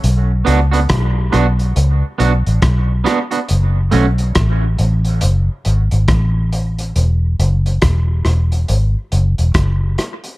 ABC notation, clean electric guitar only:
X:1
M:4/4
L:1/16
Q:"Swing 16ths" 1/4=69
K:F#m
V:1 name="Clean electric guitar"
z2 [B,DF] [B,DF] z2 [B,DF] z3 [B,DF] z3 [B,DF] [B,DF] | z2 [A,CF] z12 z | z16 |]